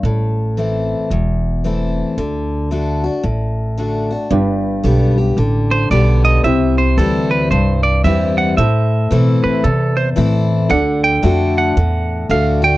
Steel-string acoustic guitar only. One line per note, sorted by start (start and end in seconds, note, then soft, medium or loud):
0.05 1.07 A2 medium
0.57 1.09 E3 medium
0.57 1.09 A3 medium
0.57 1.09 C4 soft
0.57 1.10 E4 medium
1.11 2.14 E2 medium
1.64 2.16 E3 medium
1.64 2.16 A3 soft
1.64 2.16 C4 medium
1.64 2.17 E4 soft
2.18 2.70 D3 medium
2.71 3.03 D3 soft
2.71 3.03 A3 soft
2.71 3.03 D4 medium
2.71 3.02 F#4 medium
3.04 3.24 D4 soft
3.04 3.23 F#4 medium
3.23 4.27 A2 medium
3.77 4.10 D3 soft
3.77 4.10 A3 soft
3.77 4.10 D4 medium
3.77 4.09 F#4 medium
4.11 4.31 D4 soft
4.11 4.30 F#4 soft
4.30 5.33 G2 medium
4.83 5.16 D3 medium
4.83 5.16 G3 medium
4.83 5.16 B3 medium
4.83 5.16 G4 medium
5.18 5.37 B3 soft
5.18 5.37 G4 soft
5.38 5.90 D3 medium
5.91 6.42 D3 medium
5.91 6.42 G3 medium
5.91 6.43 B3 medium
5.91 6.43 G4 medium
6.44 7.47 C3 medium
6.98 7.49 E3 medium
6.98 7.49 G3 medium
6.98 7.50 C4 medium
6.98 7.50 E4 medium
7.51 8.54 G2 medium
8.04 8.55 E3 medium
8.04 8.56 G3 medium
8.04 8.56 C4 medium
8.04 8.56 E4 medium
8.58 9.60 A2 medium
9.11 9.62 E3 medium
9.11 9.62 A3 medium
9.11 9.63 C4 medium
9.11 9.63 E4 medium
9.64 10.66 E2 medium
10.16 10.68 E3 medium
10.16 10.68 A3 medium
10.16 10.68 C4 medium
10.16 10.69 E4 medium
10.70 11.21 D3 medium
11.23 11.74 D3 medium
11.23 11.75 A3 medium
11.23 11.75 D4 medium
11.23 11.75 F#4 medium
11.77 12.78 A2 medium
12.30 12.62 D3 medium
12.30 12.62 A3 medium
12.30 12.62 D4 medium
12.30 12.61 F#4 medium
12.62 12.78 D4 soft
12.62 12.78 F#4 medium